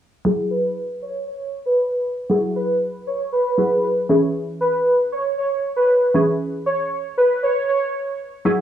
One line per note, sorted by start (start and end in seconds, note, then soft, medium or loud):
0.25 2.26 F#3 medium
0.25 2.26 E4 medium
0.25 2.27 G#4 medium
0.51 0.61 B4 medium
1.02 1.12 C#5 medium
1.27 1.38 C#5 medium
1.66 1.76 B4 medium
2.30 3.56 F#3 medium
2.30 3.56 E4 medium
2.30 3.56 G#4 medium
2.56 2.66 B4 medium
3.07 3.17 C#5 medium
3.32 3.53 B4 medium
3.58 4.09 F#3 medium
3.58 4.10 E4 soft
3.58 4.09 G#4 medium
3.58 3.69 B4 medium
4.09 6.11 E3 medium
4.09 6.11 C#4 medium
4.09 6.11 G#4 medium
4.61 4.71 B4 medium
5.12 5.23 C#5 medium
5.38 5.48 C#5 medium
5.76 5.87 B4 medium
6.14 8.16 E3 medium
6.14 8.16 C#4 medium
6.14 8.16 G#4 medium
6.66 6.77 C#5 medium
7.18 7.28 B4 medium
7.43 7.64 C#5 medium
7.69 7.79 C#5 medium
8.45 8.61 F#3 medium
8.45 8.61 E4 medium
8.45 8.61 G#4 medium